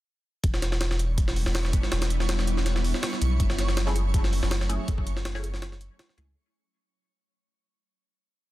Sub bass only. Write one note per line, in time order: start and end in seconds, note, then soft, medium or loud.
0.44 1.45 E1 loud
1.46 1.82 E1 medium
1.92 2.93 E1 loud
3.21 3.38 B1 medium
3.40 4.41 F#1 loud
4.42 4.78 F#1 medium
4.88 5.89 F#1 loud
6.17 6.34 C#2 loud